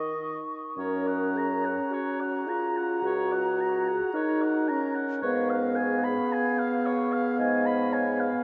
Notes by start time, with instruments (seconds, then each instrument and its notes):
Already playing: bassoon D#3, french horn D#4, clarinet A#4, oboe D#5, flute C#6
0.77 bassoon F#2, french horn C#4, clarinet A#4, oboe C#5, flute A#5
1.07 oboe F#5
1.35 clarinet G#4, oboe A#5
1.65 oboe F#5
1.90 clarinet F#4, oboe C#5
2.21 oboe F#5
2.47 french horn F4, clarinet G#4, oboe A#5
2.77 oboe F#5
3.02 bassoon C#2, french horn F#4, oboe C#5
3.32 oboe F#5
3.60 oboe A#5
3.88 oboe F#5
4.14 french horn D#4, clarinet A#4, oboe C#5
4.42 oboe F#5
4.68 french horn C#4, oboe A#5
4.95 oboe F#5
5.22 bassoon G#2, french horn B3, clarinet B4, oboe C#5, flute F5
5.50 oboe F5
5.76 clarinet G#4, oboe G#5
6.04 oboe B5
6.32 oboe G#5
6.59 oboe F5
6.86 oboe C#5
7.12 oboe F5
7.39 bassoon G#2, clarinet D#5, oboe G#5
7.66 oboe B5
7.93 clarinet C#5, oboe G#5
8.20 oboe F5